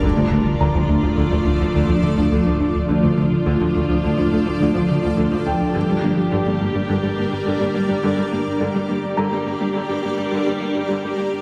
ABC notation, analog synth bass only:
X:1
M:5/4
L:1/16
Q:1/4=105
K:Gm
V:1 name="Analog synth bass" clef=bass
D,, D, D, D, D,, D,, D,, D,, D,, D,, D,, D,, D,, D,, D, D,, D,, D,, D,, D,, | D,, D, D, D, D,, D,, D,, D,, D,, D,, D,, D,, D,, D,, D, D,, D,, D,, D,, D,, | G,, G, G, G, G,, G,, G,, G,, G,, G,, G,, G,, G,, G,, G, G,, G,, G,, G,, G,, | G,, G, G, G, G,, G,, G,, G,, G,, G,, G,, G,, G,, G,, G, G,, G,, G,, G,, G,, |]